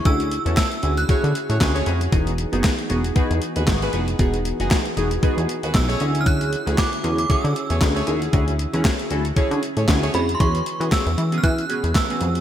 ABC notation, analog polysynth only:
X:1
M:4/4
L:1/16
Q:"Swing 16ths" 1/4=116
K:E
V:1 name="Analog polysynth"
[CEFG] z2 [CEFA] z2 [CEFG] z [CEFG]2 z2 [CEFG] z [CEFG] z | [B,DFG] z2 [B,DFG] z2 [B,DFG] z [B,DFG]2 z2 [B,DFG] z [B,DFG] z | [B,DFG] z2 [B,DFG] z2 [B,DFG] z [B,DFG]2 z2 [B,DFG] z [CEFG]2- | [CEFG]2 z [CEFG] z2 [CEFG] z [CEFG]2 z2 [CEFG] z [CEFG] z |
[CEFG] z2 [CEFG] z2 [CEFA] z [CEFG]2 z2 [CEFG] z [CEFG] z | [B,CFG] z2 [B,CFG]2 z2 [B,CFG] z2 [B,CFG] z2 [B,CFG] z2 |]